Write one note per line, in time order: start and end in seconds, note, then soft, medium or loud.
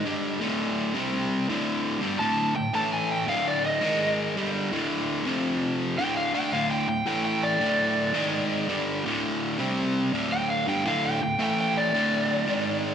0.05 0.39 G2 medium
0.05 0.39 D3 loud
0.05 0.39 G3 loud
0.40 0.92 D2 medium
0.40 0.93 A2 medium
0.40 0.93 D3 loud
0.94 1.47 C3 medium
0.94 1.47 G3 medium
0.94 1.47 C4 medium
1.48 2.00 D2 medium
1.48 2.01 A2 medium
1.48 2.00 D3 medium
2.01 2.19 G2 medium
2.01 2.19 D3 medium
2.01 2.19 G3 loud
2.19 2.54 D2 medium
2.19 2.54 A2 medium
2.19 2.55 D3 medium
2.19 2.54 A5 medium
2.55 2.70 D2 medium
2.55 2.70 A2 medium
2.55 2.73 G5 medium
2.74 3.27 A2 medium
2.74 3.27 E3 medium
2.74 3.28 A3 medium
2.74 2.92 A5 medium
2.93 3.10 G#5 medium
3.12 3.28 G5 medium
3.27 3.81 D2 medium
3.27 3.82 A2 loud
3.27 3.82 D3 medium
3.27 3.46 F5 medium
3.48 3.64 D5 medium
3.66 4.17 D#5 medium
3.81 4.35 G#2 medium
3.81 4.35 D#3 medium
3.81 4.35 G#3 medium
4.36 4.71 G2 medium
4.36 4.71 D3 medium
4.36 4.71 G3 loud
4.71 5.24 D2 medium
4.71 5.25 A2 medium
4.71 5.25 D3 loud
5.26 5.97 F2 medium
5.26 5.98 C3 medium
5.26 5.98 F3 loud
5.98 6.33 D2 medium
5.98 6.33 A2 loud
5.98 6.33 D3 loud
5.98 6.16 G5 loud
6.17 6.34 F5 medium
6.34 6.51 D3 medium
6.34 6.52 A3 medium
6.34 6.52 D4 medium
6.34 6.52 G5 medium
6.52 6.87 D2 medium
6.52 6.87 A2 medium
6.52 6.88 D3 medium
6.52 6.70 F5 medium
6.71 6.88 G5 medium
6.88 7.02 D2 medium
6.88 7.03 A2 medium
6.88 7.06 G5 medium
7.06 7.59 A2 medium
7.06 7.60 E3 medium
7.06 7.60 A3 loud
7.06 7.24 G5 medium
7.25 7.42 G5 medium
7.43 9.01 D5 medium
7.60 8.14 D2 medium
7.60 8.14 A2 medium
7.60 8.15 D3 loud
8.14 8.67 G#2 medium
8.14 8.68 D#3 medium
8.14 8.68 G#3 loud
8.68 9.03 G2 medium
8.68 9.04 D3 medium
8.68 9.04 G3 loud
9.05 9.58 D2 medium
9.05 9.58 A2 medium
9.05 9.58 D3 loud
9.59 10.11 C3 medium
9.59 10.12 G3 medium
9.59 10.12 C4 loud
10.13 10.66 D2 medium
10.13 10.66 A2 medium
10.13 10.66 D3 medium
10.32 10.49 G5 loud
10.51 10.67 F5 medium
10.67 10.84 G2 medium
10.67 10.84 D3 medium
10.67 10.85 G3 loud
10.67 10.85 G5 medium
10.85 11.19 D2 medium
10.85 11.20 A2 medium
10.85 11.20 D3 loud
10.85 11.04 F5 loud
11.06 11.22 G5 medium
11.21 11.35 D2 medium
11.21 11.36 A2 medium
11.21 11.39 G5 medium
11.39 11.92 A2 medium
11.39 11.93 E3 medium
11.39 11.93 A3 medium
11.39 11.58 G5 medium
11.61 11.76 G5 medium
11.77 12.95 D5 loud
11.93 12.46 D2 medium
11.93 12.47 A2 medium
11.93 12.47 D3 loud
12.46 12.95 G#2 loud
12.46 12.95 D#3 loud
12.46 12.95 G#3 medium